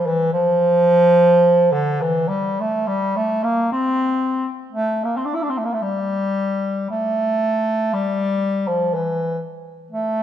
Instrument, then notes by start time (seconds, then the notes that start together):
bass clarinet
0.07 E3
0.33 F3
1.72 D3
2.01 E3
2.29 G3
2.60 A3
2.87 G3
3.16 A3
3.44 A#3
3.72 C4
4.72 A3
5.04 A#3
5.17 C4
5.25 D4
5.34 E4
5.42 D4
5.50 C4
5.58 A3
5.65 A#3
5.73 A3
5.82 G3
6.90 A3
7.93 G3
8.68 F3
8.94 E3
9.91 A3